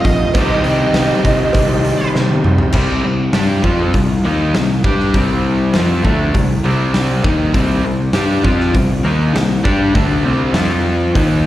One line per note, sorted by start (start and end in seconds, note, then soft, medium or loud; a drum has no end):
0.00 0.32 F2 medium
0.00 0.33 C3 medium
0.00 0.33 F3 medium
0.00 0.33 A3 loud
0.00 0.32 C4 medium
0.00 0.37 C4 medium
0.00 0.33 F4 medium
0.00 0.34 F4 loud
0.00 0.33 A4 medium
0.00 0.33 C5 medium
0.00 2.08 D#5 medium
0.05 0.24 A#1 medium
0.05 kick medium
0.05 open hi-hat medium
0.34 0.54 C2 loud
0.34 2.72 C3 medium
0.34 2.73 D#3 medium
0.34 2.73 G3 medium
0.34 2.72 C4 medium
0.34 2.74 C4 medium
0.34 2.71 D#4 medium
0.34 2.72 G4 medium
0.34 2.72 C5 medium
0.34 kick loud
0.34 open hi-hat medium
0.34 cowbell medium
0.38 2.74 G4 loud
0.64 0.83 C2 medium
0.64 open hi-hat medium
0.93 1.13 C2 medium
0.93 snare loud
0.93 open hi-hat medium
0.93 cowbell medium
1.24 1.43 C2 medium
1.24 kick medium
1.24 open hi-hat medium
1.53 1.92 C2 medium
1.53 kick medium
1.53 open hi-hat medium
1.53 cowbell loud
1.85 open hi-hat medium
2.15 2.34 C3 medium
2.15 snare medium
2.15 cowbell medium
2.29 high tom medium
2.44 2.64 C2 medium
2.44 mid tom medium
2.58 floor tom medium
2.72 3.02 C2 loud
2.72 3.03 C3 medium
2.72 3.03 G3 loud
2.72 3.03 C4 loud
2.72 kick medium
2.72 crash loud
3.04 3.33 C2 medium
3.04 3.28 C3 medium
3.04 3.28 G3 medium
3.33 3.62 G2 medium
3.33 3.63 G3 medium
3.33 3.63 D4 medium
3.33 3.64 G4 medium
3.33 snare loud
3.33 open hi-hat medium
3.62 3.92 F2 medium
3.62 3.92 F3 medium
3.62 3.93 C4 medium
3.62 3.93 F4 loud
3.62 kick medium
3.94 4.22 C2 medium
3.94 4.18 C3 medium
3.94 4.19 G3 medium
3.94 kick medium
3.94 open hi-hat medium
4.24 4.54 D#2 medium
4.24 4.53 D#3 medium
4.24 4.54 A#3 loud
4.24 4.54 D#4 loud
4.54 4.83 C2 medium
4.54 4.79 C3 medium
4.54 4.79 G3 medium
4.54 snare loud
4.54 open hi-hat medium
4.84 5.12 G2 medium
4.84 5.14 G3 medium
4.84 5.14 D4 medium
4.84 5.14 G4 medium
4.84 kick loud
4.99 snare soft
5.14 5.70 C2 medium
5.14 5.73 C3 medium
5.14 5.74 G3 medium
5.14 5.74 C4 medium
5.14 kick loud
5.14 open hi-hat soft
5.74 6.03 F2 medium
5.74 6.03 F3 medium
5.74 6.04 C4 medium
5.74 6.04 F4 loud
5.74 snare loud
5.74 open hi-hat medium
6.04 6.32 D2 medium
6.04 6.33 D3 medium
6.04 6.34 A3 medium
6.04 6.34 D4 medium
6.04 kick medium
6.34 6.62 C2 medium
6.34 6.58 C3 medium
6.34 6.59 G3 medium
6.34 kick medium
6.34 open hi-hat medium
6.64 7.21 C2 medium
6.64 7.23 C3 medium
6.64 7.24 G3 loud
6.64 7.24 C4 medium
6.94 snare loud
6.94 open hi-hat medium
7.24 7.52 D#2 medium
7.24 7.53 D#3 medium
7.24 7.54 A#3 medium
7.24 7.54 D#4 medium
7.24 kick loud
7.54 7.82 C2 medium
7.54 7.83 C3 loud
7.54 7.84 G3 medium
7.54 7.84 C4 loud
7.54 kick medium
7.54 open hi-hat medium
7.85 8.13 C2 medium
7.85 8.09 C3 medium
7.85 8.09 G3 medium
8.13 8.42 G2 medium
8.13 8.43 G3 medium
8.13 8.44 D4 medium
8.13 8.44 G4 loud
8.13 snare loud
8.13 open hi-hat medium
8.43 8.72 F2 loud
8.43 8.73 F3 medium
8.43 8.73 C4 medium
8.43 8.74 F4 loud
8.43 kick medium
8.60 snare soft
8.74 9.03 C2 medium
8.74 8.98 C3 medium
8.74 8.99 G3 medium
8.74 kick medium
8.74 open hi-hat medium
9.03 9.33 D#2 medium
9.03 9.33 D#3 medium
9.03 9.34 A#3 medium
9.03 9.34 D#4 medium
9.34 9.62 C2 medium
9.34 9.59 C3 medium
9.34 9.59 G3 medium
9.34 snare loud
9.34 open hi-hat medium
9.63 9.93 G2 medium
9.63 9.93 G3 medium
9.63 9.93 D4 medium
9.63 9.94 G4 medium
9.63 kick medium
9.94 10.23 D2 medium
9.94 10.24 D3 medium
9.94 10.24 A3 medium
9.94 10.24 D4 medium
9.94 kick loud
9.94 open hi-hat soft
10.24 10.52 C2 medium
10.24 10.54 C3 medium
10.24 10.55 G3 medium
10.24 10.55 C4 medium
10.53 11.10 F2 medium
10.53 11.14 F3 medium
10.53 11.15 C4 medium
10.53 11.15 F4 medium
10.53 snare loud
10.53 open hi-hat soft
11.15 11.46 D#2 medium
11.15 11.46 D#3 medium
11.15 11.46 A#3 medium
11.15 11.46 D#4 loud
11.15 kick loud
11.15 open hi-hat medium